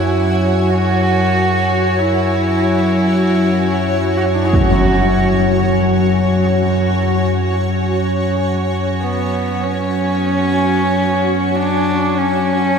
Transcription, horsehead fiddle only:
0, 0, Header, 1, 2, 480
1, 0, Start_track
1, 0, Tempo, 500000
1, 12276, End_track
2, 0, Start_track
2, 0, Title_t, "Horsehead fiddle"
2, 0, Program_c, 0, 110
2, 0, Note_on_c, 0, 64, 97
2, 675, Note_on_c, 0, 66, 108
2, 689, Note_off_c, 0, 64, 0
2, 1909, Note_on_c, 0, 64, 109
2, 1923, Note_off_c, 0, 66, 0
2, 4006, Note_on_c, 0, 66, 84
2, 4021, Note_off_c, 0, 64, 0
2, 4089, Note_on_c, 0, 64, 84
2, 4103, Note_off_c, 0, 66, 0
2, 4172, Note_on_c, 0, 62, 85
2, 4187, Note_off_c, 0, 64, 0
2, 4277, Note_on_c, 0, 64, 78
2, 4289, Note_on_c, 0, 68, 64
2, 4292, Note_off_c, 0, 62, 0
2, 4296, Note_off_c, 0, 64, 0
2, 4362, Note_on_c, 0, 66, 92
2, 4376, Note_off_c, 0, 68, 0
2, 5584, Note_off_c, 0, 66, 0
2, 8652, Note_on_c, 0, 59, 79
2, 9248, Note_on_c, 0, 61, 99
2, 9263, Note_off_c, 0, 59, 0
2, 11090, Note_on_c, 0, 62, 105
2, 11105, Note_off_c, 0, 61, 0
2, 11707, Note_on_c, 0, 61, 102
2, 11721, Note_off_c, 0, 62, 0
2, 12276, Note_off_c, 0, 61, 0
2, 12276, End_track
0, 0, End_of_file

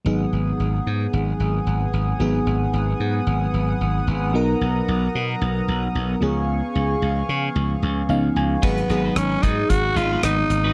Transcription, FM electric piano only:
0, 0, Header, 1, 2, 480
1, 0, Start_track
1, 0, Tempo, 535714
1, 52, Time_signature, 4, 2, 24, 8
1, 9616, End_track
2, 0, Start_track
2, 0, Title_t, "FM electric piano"
2, 0, Program_c, 0, 5
2, 42, Note_on_c, 0, 54, 58
2, 50, Note_on_c, 0, 59, 57
2, 57, Note_on_c, 0, 63, 55
2, 64, Note_on_c, 0, 68, 69
2, 225, Control_c, 0, 64, 127
2, 1931, Note_off_c, 0, 54, 0
2, 1935, Note_off_c, 0, 59, 0
2, 1939, Note_off_c, 0, 63, 0
2, 1942, Note_off_c, 0, 68, 0
2, 1962, Note_on_c, 0, 54, 60
2, 1969, Note_on_c, 0, 59, 60
2, 1976, Note_on_c, 0, 63, 54
2, 1982, Note_on_c, 0, 68, 70
2, 3851, Note_off_c, 0, 54, 0
2, 3855, Note_off_c, 0, 59, 0
2, 3858, Note_off_c, 0, 63, 0
2, 3861, Note_off_c, 0, 68, 0
2, 3880, Note_on_c, 0, 54, 63
2, 3890, Note_on_c, 0, 59, 59
2, 3897, Note_on_c, 0, 63, 58
2, 3903, Note_on_c, 0, 70, 71
2, 3904, Control_c, 0, 64, 0
2, 4042, Control_c, 0, 64, 127
2, 5533, Note_off_c, 0, 54, 0
2, 5538, Note_off_c, 0, 59, 0
2, 5541, Note_off_c, 0, 63, 0
2, 5544, Note_off_c, 0, 70, 0
2, 5560, Note_on_c, 0, 53, 66
2, 5567, Note_on_c, 0, 59, 58
2, 5575, Note_on_c, 0, 61, 59
2, 5580, Note_on_c, 0, 68, 70
2, 5582, Control_c, 0, 64, 0
2, 5733, Control_c, 0, 64, 127
2, 7212, Note_off_c, 0, 53, 0
2, 7216, Note_off_c, 0, 59, 0
2, 7220, Note_off_c, 0, 61, 0
2, 7223, Note_off_c, 0, 68, 0
2, 7250, Note_on_c, 0, 53, 51
2, 7253, Note_on_c, 0, 59, 50
2, 7256, Note_on_c, 0, 61, 50
2, 7256, Note_on_c, 0, 77, 66
2, 7261, Note_on_c, 0, 63, 58
2, 7477, Note_off_c, 0, 77, 0
2, 7495, Note_on_c, 0, 80, 66
2, 7717, Note_off_c, 0, 80, 0
2, 7722, Note_off_c, 0, 59, 0
2, 7726, Note_off_c, 0, 63, 0
2, 7728, Note_on_c, 0, 54, 65
2, 7731, Note_off_c, 0, 53, 0
2, 7733, Note_on_c, 0, 59, 60
2, 7734, Note_off_c, 0, 61, 0
2, 7737, Note_on_c, 0, 63, 58
2, 7741, Note_on_c, 0, 68, 70
2, 7745, Control_c, 0, 64, 0
2, 7907, Control_c, 0, 64, 127
2, 7920, Note_off_c, 0, 54, 0
2, 7922, Note_off_c, 0, 59, 0
2, 7924, Note_off_c, 0, 63, 0
2, 7926, Note_off_c, 0, 68, 0
2, 7968, Note_on_c, 0, 54, 67
2, 7974, Note_on_c, 0, 59, 62
2, 7979, Note_on_c, 0, 63, 61
2, 7983, Note_on_c, 0, 68, 75
2, 8707, Note_off_c, 0, 54, 0
2, 8710, Note_off_c, 0, 59, 0
2, 8712, Note_off_c, 0, 63, 0
2, 8715, Note_off_c, 0, 68, 0
2, 9616, End_track
0, 0, End_of_file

